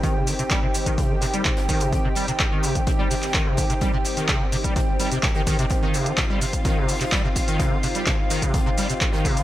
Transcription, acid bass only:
\new Staff \with { instrumentName = "Acid bass" } { \clef bass \time 4/4 \key c \minor \tempo 4 = 127 ees16 c16 ees16 c16 g16 c16 r16 ees16 c16 ees16 c16 g16 c16 r16 ees16 c16 | ees16 c16 g16 c16 r16 ees16 c16 ees16 c16 g16 c16 r16 ees16 c16 ees16 c16 | g16 c16 r16 ees16 c16 ees16 c16 g16 c16 r16 g16 c16 c16 ees16 ees16 c16 | r16 ees16 c16 ees16 c16 g16 c16 r16 ees16 c16 ees16 c16 g16 c16 r16 ees16 |
c16 ees16 c16 g16 c16 r16 ees16 c16 ees16 c16 g16 c16 r16 ees16 c16 ees16 | }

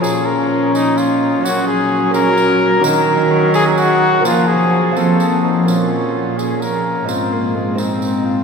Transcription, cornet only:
\new Staff \with { instrumentName = "Cornet" } { \time 6/8 \key bes \minor \tempo 4. = 85 aes'8 bes'4 ees'8 f'4 | ges'8 aes'4 bes'4. | bes'4. aes'8 ges'4 | f'8 aes'4 a'4 ees'8 |
f'4. aes'8 bes'4 | f'4. ees'4 f'8 | }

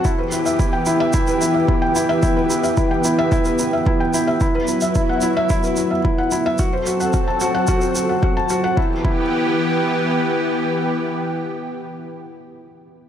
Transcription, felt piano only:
\new Staff \with { instrumentName = "Felt piano" } { \time 4/4 \key e \minor \tempo 4 = 110 e'16 b'16 e'16 e''16 e'16 g''16 e'16 e''16 e'16 b'16 e'16 e''16 e'16 g''16 e'16 e''16 | e'16 b'16 e'16 e''16 e'16 g''16 e'16 e''16 e'16 b'16 e'16 e''16 e'16 g''16 e'16 e''16 | e'16 b'16 e'16 e''16 e'16 fis''16 e'16 e''16 e'16 b'16 e'16 e''16 e'16 fis''16 e'16 e''16 | fis'16 c''16 fis'16 fis''16 fis'16 a''16 fis'16 fis''16 fis'16 c''16 fis'16 fis''16 fis'16 a''16 fis'16 fis''16 |
e'16 r16 e'16 r2. r16 | r1 | }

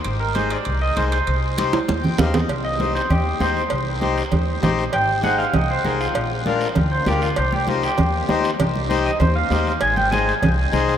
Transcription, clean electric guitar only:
\new Staff \with { instrumentName = "Clean electric guitar" } { \time 4/4 \key c \minor \tempo 4 = 197 r8 bes'8 c''8 d''4 ees''8 c''8 c''8~ | c''2. r4 | r8 ees''4 c''8 g'4 c''4~ | c''4 r2. |
g''4 fis''8 f''8 ees''8 c''8 bes'8 f'8~ | f'8 r2 c''8 g'8 f'8 | c''8 g'8 f'8 g'2~ g'8~ | g'8 r4 ees''8 c''8 f''4. |
aes''8 g''8 aes''2 r4 | }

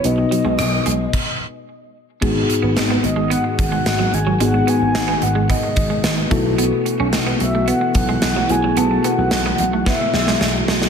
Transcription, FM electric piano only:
<<
  \new Staff \with { instrumentName = "FM electric piano" } { \time 4/4 \key gis \phrygian \tempo 4 = 110 <b dis' fis' b'>2 r2 | <b dis' fis' gis'>1 | <b dis' fis' gis'>2.~ <b dis' fis' gis'>8 <b e' fis' a'>8~ | <b e' fis' a'>2.~ <b e' fis' a'>8 <b e' fis' gis'>8~ |
<b e' fis' gis'>2.~ <b e' fis' gis'>8 r8 | }
  \new Staff \with { instrumentName = "FM electric piano" } { \clef bass \time 4/4 \key gis \phrygian b,4. r2 r8 | gis,4. r2 r8 | gis,4. r2 b,8~ | b,4 r2 r8 b,8~ |
b,4 r2. | }
>>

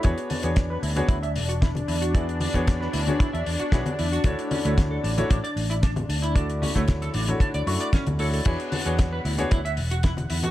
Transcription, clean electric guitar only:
\new Staff \with { instrumentName = "Clean electric guitar" } { \time 4/4 \key e \mixolydian \tempo 4 = 114 e'16 r16 d'16 b16 r16 b'16 e'16 r16 e'16 e''16 r16 fis'16 e'16 r16 e'16 fis'16 | e'16 r16 d'16 b16 r16 b'16 e'16 r16 e'16 e''16 r16 fis'16 e'16 r16 e'16 fis'16 | d'16 r16 cis'16 a16 r16 a'16 d'16 r16 d'16 d''16 r16 e'16 d'16 r16 d'16 e'16 | d'16 r16 cis'16 a16 r16 a'16 d'16 r16 d'16 d''16 r16 d''16 cis'16 r16 a'16 a'16 |
e'16 r16 d'16 b16 r16 b'16 e'16 r16 e'16 e''16 r16 fis'16 e'16 r16 e'16 fis'16 | }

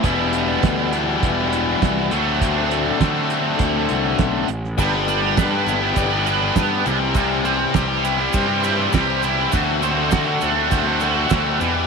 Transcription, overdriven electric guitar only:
\new Staff \with { instrumentName = "Overdriven electric guitar" } { \time 4/4 \key g \major \tempo 4 = 101 <e, b, e g b e'>4. <e, b, e g b e'>2 <d a c' fis'>8~ | <d a c' fis'>4 <d a c' fis'>2~ <d a c' fis'>8 r8 | <g, d g b d' g'>8 <g b d' g'>16 <g b d' g'>16 <g, d g b d' g'>16 <g b d' g'>8 <g b d' g'>8 <g b d' g'>16 <g b d' g'>16 <g b d' g'>16 <g, d g b d' g'>8 <c e g c' g'>16 <g c' g'>16 | <c e g c' g'>8 <e g c' g'>16 <g c' g'>16 <c e g c' g'>16 <g c' g'>8 <g c' g'>8 <g c' g'>16 <e g c' g'>16 <g c' g'>16 <c e g c' g'>8 <e g c' g'>16 <g c' g'>16 |
<d a c' fis'>8 <d a c' fis'>16 <a c' fis'>16 <d a c' fis'>16 <a c' fis'>8 <a c' fis'>8 <a c' fis'>16 <d a c' fis'>16 <a c' fis'>16 <d a c' fis'>8 <e, b, e g b g'>16 <e g b g'>16 | }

